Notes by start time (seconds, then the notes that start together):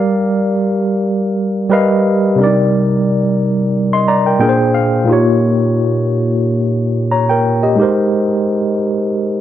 Already playing: G3 G4 A#4 D5 F5
1.69 G3 G4 A#4 B4 D#5 F5
2.36 C3 G3
2.40 D4 A#4 D5
2.46 D#4
3.93 D#5 C6
4.08 D5 A#5
4.26 A#4 G5
4.39 A#2 A#3 D4 G#4 A#4 G5
4.49 C5
4.74 F5
5.05 A#2 A#3 D#4
5.09 F4 G4 C#5
7.12 C#5 A#5
7.29 A#4 G5
7.63 G4 D#5
7.76 G#3 D#4 G4
7.82 A#4 C5